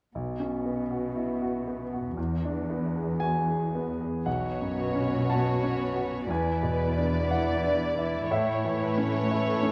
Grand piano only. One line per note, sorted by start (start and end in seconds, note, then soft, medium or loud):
0.15 2.14 B1 soft
0.40 0.81 C#4 soft
0.66 1.06 B3 soft
0.91 1.32 F#4 soft
1.16 1.42 E4 soft
1.42 1.82 F#4 soft
1.68 2.08 B3 soft
1.93 2.18 F#4 soft
2.17 4.22 E2 soft
2.45 2.85 D4 soft
2.70 3.11 B3 soft
2.95 3.37 G#4 soft
3.20 3.48 F#4 soft
3.20 4.22 G#5 medium
3.48 3.90 G#4 soft
3.75 4.16 B3 soft
4.01 4.26 G#4 soft
4.26 6.25 B1 soft
4.26 5.24 F#5 soft
4.62 5.16 F#2 soft
4.95 5.49 C#4 soft
5.30 5.83 F#4 soft
5.30 6.26 A5 soft
5.63 6.16 C#4 soft
5.96 6.29 F#4 soft
6.30 8.27 E2 soft
6.30 7.26 G#5 soft
6.63 7.16 B2 soft
6.98 7.50 D4 soft
7.30 7.84 E4 soft
7.30 8.27 F#5 soft
7.63 8.17 D4 soft
7.98 8.31 E4 soft
8.31 9.72 A2 soft
8.31 9.72 E5 medium
8.65 9.18 E3 soft
8.98 9.50 C#4 soft
9.31 9.72 E4 soft
9.63 9.72 C#4 soft